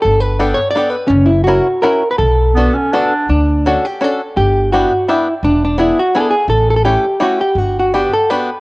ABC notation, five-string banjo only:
X:1
M:3/4
L:1/8
Q:"Swing" 1/4=168
K:Bm
V:1 name="Five-string banjo"
z2 [B,DGA] z [B,DGA] z | z2 [CEF^A] z [CEFA] z | z2 [B,DFA] z [B,DFA] z | [K:D] z2 [CDFA] z [CDFA] z |
z2 [B,DEG] z [B,DEG] z | z2 [B,DE^G] z [B,DEG] z | z2 [A,CEG] z [A,CEG] z | z2 [B,DFG] z [B,DFG] z |]